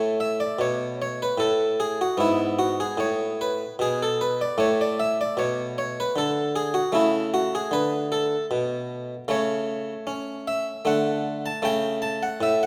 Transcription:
harpsichord
Already playing: A2 A3 C#5
0.20 E5
0.40 D5
0.59 B2 C#5
1.02 C#5
1.22 B4
1.38 A2 A4
1.80 G#4
2.01 F#4
2.17 G#2 B3 E4
2.59 F#4
2.80 G#4
2.97 A2 C#5
3.41 B4
3.79 B2 G#4
4.03 A4
4.21 B4
4.41 D5
4.58 A2 A3 C#5
4.81 D5
5.00 E5
5.21 D5
5.37 B2 C#5
5.78 C#5
6.00 B4
6.16 D3 A4
6.56 G#4
6.74 F#4
6.92 C#3 A3 E4
7.34 F#4
7.55 G#4
7.71 D3 B4
8.12 A4
8.51 B2
9.28 C#3 A3 C#5
10.07 C#4
10.47 E5
10.85 D3 A3 F#5
11.46 A5
11.62 C#3 A3 G5
12.02 A5
12.23 F#5
12.41 A2 E5
12.63 F#5

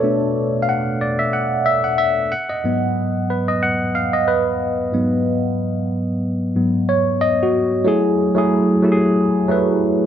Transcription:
tine electric piano
Already playing: B2 A3 D4 A4 B4 C#5 D5 E5
0.03 B2 A3 D4
0.62 F5
0.69 F#5
1.01 D5
1.19 E5
1.33 F#5
1.66 E5
1.84 F#5
1.98 E5
2.32 F#5
2.49 D#5
2.64 G#2 F#3 B3
3.30 B4
3.48 D#5
3.63 F#5
3.95 F5
4.13 D#5
4.28 B4
4.93 G#2 F#3 B3
6.55 G#2 F#3 B3
6.89 C#5
7.21 D#5
7.43 F#4
7.84 F#3 A3 E4 G#4
8.35 F#3 A3 E4 G#4
8.82 F#3 A3 E4 G4
8.92 G#4
9.48 F#3 A3 E4 B4

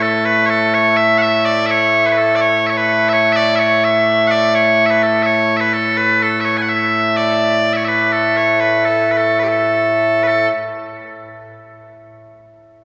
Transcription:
bagpipes
Already playing: A2 A3
0.02 A4
0.25 B4
0.46 C#5
0.50 A4
0.74 C#5
0.97 E5
1.18 E5 F#5
1.45 D5
1.66 E5
1.71 C#5
2.06 B4 C#5
2.11 B4
2.18 A4
2.35 D5
2.41 C#5
2.67 C#5 E5
2.77 B4
3.09 E5
3.13 C#5
3.33 D5 E5
3.56 C#5 E5
3.84 E5
4.27 F#5
4.31 D5
4.55 C#5
4.86 E5
4.90 B4
5.03 A4
5.23 C#5 E5
5.57 B4 E5
5.73 A4
5.97 B4
6.22 A4
6.41 E5
6.45 C#5
6.57 G#5
6.62 F#5
6.69 E5
7.17 D5
7.73 C#5 E5
7.85 B4 E5
8.12 A4
8.37 C#5
8.60 B4
8.85 A4
9.11 B4
9.17 A4
9.39 B4
9.43 G4
9.48 A4
10.23 B4
10.27 A4

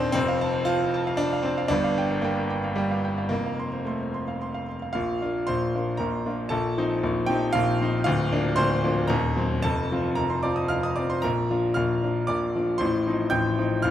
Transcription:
grand piano
Already playing: D#1 D#2 A#3 C4 D4 D#4 G4 C5 G5
0.02 C5
0.12 F1 F2 C4
0.28 F5
0.41 A5
0.55 C5
0.65 F4 A5
0.81 C5
0.94 A5
1.07 F5
1.17 D4 A5
1.33 F5
1.43 C4 A5
1.58 F5
1.68 G1 G2 D4
1.84 F5
1.98 G5
2.11 A#4
2.22 A#3 G5
2.37 A#4
2.50 G5
2.64 F5
2.75 G3 G5
2.91 F5
3.05 G5
3.18 F5
3.29 F1 F2 A#3
3.46 F5
3.59 C6
3.73 C5
3.85 A3 C6
4.00 C5
4.14 C6
4.28 F5
4.42 C6
4.54 F5
4.68 C6
4.82 F5
4.93 A#1 A#2 F4 F5
5.22 A#3 D4 F4
5.47 A#1 A#2 C5 C6
5.75 A#3 D4 F4
5.97 A#1 A#2 A#4 A#5
6.26 A#3 D4 F4
6.49 A#1 A#2 A4 A5
6.78 F3 C4 D#4
7.04 A#1 A#2
7.26 F3 C4 D#4 G4 G5
7.53 A#1 A#2 F4 F5
7.81 F3 C4 D#4
8.04 D1 D2 F4 F5
8.32 F3 A#3 D4
8.56 D1 D2 C5 C6
8.84 F3 A#3 D4
9.08 D#1 D#2 A#4 A#5
9.37 F#3 C4
9.62 F1 F2 A4 A5
9.92 F3 C4 F4
10.15 F1 F2 A#4 A#5
10.30 C5 C6
10.43 F3 C4 F4 D5 D6
10.56 D#5 D#6
10.68 F1 F2 F5 F6
10.83 D#5 D#6
10.96 F3 C4 F4 D5 D6
11.10 C5 C6
11.22 A#1 A#2 A#4 A#5
11.50 F3 D4 F4
11.74 A#1 A#2 F5 F6
12.03 F3 D4 F4
12.27 A#1 A#2 D5 D6
12.55 F3 D4 F4
12.78 A1 A2 C5 C6
13.07 F3 C4 D#4
13.30 A1 A2 G5 G6
13.59 F3 C4 D#4
13.82 A1 A2 F5 F6

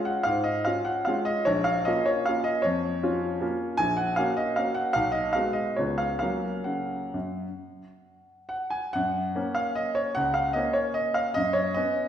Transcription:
grand piano
Already playing: G#3 C#4 F4
0.05 F#5
0.23 G#2 F5
0.44 D#5
0.65 C#4 F4 F5
0.85 F#5
1.05 G#3 C#4 F4 F5
1.25 D#5
1.45 A#1 C#5
1.64 F5
1.85 A#3 C#4 F4 D#5
2.06 C#5
2.26 A#3 C#4 F4 F5
2.44 D#5
2.62 F2 C#5
3.03 C#4 F4
3.41 A#3 C#4 F4
3.77 A#1 G#5
3.97 F#5
4.16 A#3 C#4 F#4 F5
4.37 D#5
4.56 A#3 C#4 F#4 F5
4.75 F#5
4.93 B1 F5
5.12 D#5
5.33 G#3 B3 F#4 F5
5.53 D#5
5.76 C#2 G#3 B3 F4 C#5
5.98 F5
6.19 F#3 A#3 C#4 F5
6.64 C#3 F#5
7.14 F#2
8.49 F#5
8.70 G#5
8.93 F#2 F#5
9.35 A#3 C#4
9.55 F5
9.75 D#5
9.95 C#5
10.15 C#2 F#5
10.34 F5
10.53 A#3 C#4 D#5
10.73 C#5
10.94 D#5
11.14 F5
11.34 F#2 D#5
11.53 C#5
11.74 B3 C#4 D#5

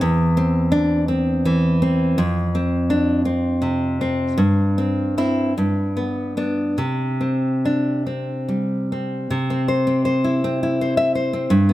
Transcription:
nylon-string guitar
0.01 E2
0.37 C4
0.72 D4
1.08 C4
1.45 E3
1.82 C4
2.18 F2
2.55 C4
2.90 D4
3.25 C4
3.62 C3
4.01 C4
4.38 G2
4.78 C4
5.18 C4 E4
5.58 G2
5.97 B3
6.37 B3 D4
6.78 C3
7.21 C4
7.65 D4
8.07 C4
8.48 G3
8.92 C4
9.30 C3
9.50 C4
9.68 C5
9.87 C4
10.05 C5
10.24 E4
10.44 C4
10.63 E4
10.81 C5
10.97 E5
11.15 C5
11.33 C4
11.50 G2
11.69 B3

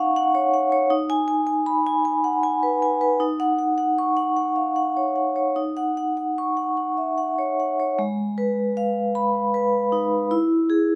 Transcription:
vibraphone
Already playing: D#4 F5 F#5 C#6
0.16 F#5
0.35 C#5
0.54 F#5
0.72 C#5
0.90 D#4
1.10 G#5
1.28 G#5
1.47 G#5
1.66 B5
1.87 G#5
2.05 G#5
2.24 F#5
2.43 G#5
2.63 B4
2.82 G#5
3.01 B4
3.20 D#4
3.40 F#5
3.59 F#5
3.78 F#5
3.99 C#6
4.17 F#5
4.37 F#5
4.56 F5
4.76 F#5
4.97 C#5
5.16 F#5
5.36 C#5
5.56 D#4
5.77 F#5
5.97 F#5
6.17 F#5
6.38 C#6
6.57 F#5
6.77 F#5
6.97 E5
7.18 F#5
7.39 C#5
7.60 F#5
7.80 C#5
7.99 G#3
8.38 B4
8.77 F5
9.15 B5
9.54 B4
9.92 D#4
10.31 E4
10.70 G#4

